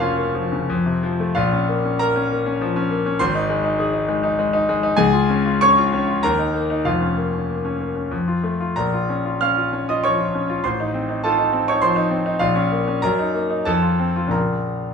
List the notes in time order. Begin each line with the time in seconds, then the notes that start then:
Already playing: F1 F2 C#3 F3 A#3 F#4 F#5
0.00 C#4 F4 F5
0.17 A#3
0.34 F3
0.52 C#3
0.70 F2
0.86 C3
1.03 F3
1.20 A3
1.35 A#1 F4 F5
1.52 C#4
1.68 A#3
1.85 C#4
1.99 A#3 A#4 A#5
2.16 C#4
2.32 A#3
2.46 C#4
2.61 F3
2.76 C#4
2.91 A#3
3.06 C#4
3.19 G#1 C5 C6
3.35 D#4
3.50 G#3
3.64 D#4
3.79 G#4
3.94 D#4
4.08 G#3
4.23 D#4
4.39 G#3
4.53 D#4
4.69 G#3
4.83 D#4
4.97 C#2 G#4 G#5
5.13 F4
5.30 C#4
5.46 F4
5.61 C#4 C#5 C#6
5.78 F4
5.93 C#4
6.08 F4
6.23 D#2 A#4 A#5
6.39 D#4
6.54 A#3
6.70 D#4
6.85 F1 F2 F4 F5
7.01 C#4
7.17 A#3
7.33 C#4
7.49 A#3
7.65 C#4
7.80 A#3
7.96 C#4
8.11 F2
8.28 F4
8.43 A3
8.60 F4
8.76 A#1 A#4 A#5
8.93 F4
9.09 C#4
9.25 F4
9.41 C#4 F5 F6
9.57 F4
9.73 C#4
9.89 F4 D#5 D#6
10.04 F3 C#5 C#6
10.19 F4
10.35 C#4
10.49 F4
10.64 A1 C5 C6
10.80 D#4
10.94 C4
11.09 D#4
11.24 F4 A4 A5
11.38 D#4
11.53 C4
11.68 D#4 C#5 C#6
11.82 F3 C5 C6
11.96 D#4
12.11 C4
12.26 D#4
12.39 A#1 F4 F5
12.55 C#4
12.72 A#3
12.88 C#4
13.02 F#2 A#4 A#5
13.19 D#4
13.34 A#3
13.50 D#4
13.65 F2 A4 A5
13.82 F4
13.99 C4
14.16 F4
14.27 A#1 C#3 A#3 F4 A#5
14.33 A#4